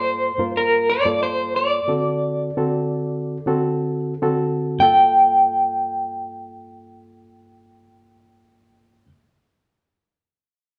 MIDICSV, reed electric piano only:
0, 0, Header, 1, 2, 480
1, 0, Start_track
1, 0, Key_signature, -2, "minor"
1, 0, Tempo, 656455
1, 1381, Time_signature, 4, 2, 24, 8
1, 1382, Tempo, 700117
1, 2342, Tempo, 739827
1, 2822, Tempo, 788436
1, 6937, End_track
2, 0, Start_track
2, 0, Title_t, "Reed electric piano"
2, 0, Program_c, 0, 4
2, 0, Note_on_c, 0, 43, 79
2, 0, Note_on_c, 0, 58, 70
2, 0, Note_on_c, 0, 65, 67
2, 0, Note_on_c, 0, 69, 86
2, 223, Note_off_c, 0, 43, 0
2, 224, Note_off_c, 0, 58, 0
2, 226, Note_off_c, 0, 65, 0
2, 227, Note_off_c, 0, 69, 0
2, 282, Note_on_c, 0, 43, 75
2, 286, Note_on_c, 0, 65, 71
2, 288, Note_on_c, 0, 58, 70
2, 288, Note_on_c, 0, 70, 82
2, 709, Note_off_c, 0, 43, 0
2, 711, Note_off_c, 0, 65, 0
2, 712, Note_off_c, 0, 58, 0
2, 712, Note_off_c, 0, 70, 0
2, 768, Note_on_c, 0, 43, 69
2, 771, Note_on_c, 0, 58, 63
2, 771, Note_on_c, 0, 65, 64
2, 773, Note_on_c, 0, 69, 72
2, 1309, Note_off_c, 0, 43, 0
2, 1310, Note_off_c, 0, 58, 0
2, 1310, Note_off_c, 0, 65, 0
2, 1311, Note_off_c, 0, 69, 0
2, 1372, Note_on_c, 0, 60, 60
2, 1373, Note_on_c, 0, 50, 69
2, 1374, Note_on_c, 0, 66, 58
2, 1380, Note_on_c, 0, 69, 69
2, 1795, Note_off_c, 0, 50, 0
2, 1795, Note_off_c, 0, 60, 0
2, 1796, Note_off_c, 0, 66, 0
2, 1798, Note_off_c, 0, 69, 0
2, 1849, Note_on_c, 0, 50, 77
2, 1850, Note_on_c, 0, 60, 73
2, 1852, Note_on_c, 0, 66, 71
2, 1852, Note_on_c, 0, 69, 83
2, 2390, Note_off_c, 0, 50, 0
2, 2390, Note_off_c, 0, 60, 0
2, 2391, Note_off_c, 0, 66, 0
2, 2392, Note_off_c, 0, 69, 0
2, 2455, Note_on_c, 0, 50, 83
2, 2459, Note_on_c, 0, 60, 81
2, 2460, Note_on_c, 0, 66, 78
2, 2462, Note_on_c, 0, 69, 94
2, 2881, Note_off_c, 0, 50, 0
2, 2883, Note_off_c, 0, 60, 0
2, 2884, Note_off_c, 0, 66, 0
2, 2885, Note_off_c, 0, 69, 0
2, 2937, Note_on_c, 0, 50, 84
2, 2938, Note_on_c, 0, 60, 79
2, 2941, Note_on_c, 0, 66, 83
2, 2941, Note_on_c, 0, 69, 99
2, 3283, Note_on_c, 0, 43, 73
2, 3292, Note_off_c, 0, 50, 0
2, 3292, Note_off_c, 0, 60, 0
2, 3292, Note_on_c, 0, 58, 65
2, 3294, Note_off_c, 0, 66, 0
2, 3294, Note_off_c, 0, 69, 0
2, 3300, Note_on_c, 0, 65, 66
2, 3304, Note_on_c, 0, 69, 78
2, 5877, Note_off_c, 0, 43, 0
2, 5886, Note_off_c, 0, 58, 0
2, 5894, Note_off_c, 0, 65, 0
2, 5898, Note_off_c, 0, 69, 0
2, 6937, End_track
0, 0, End_of_file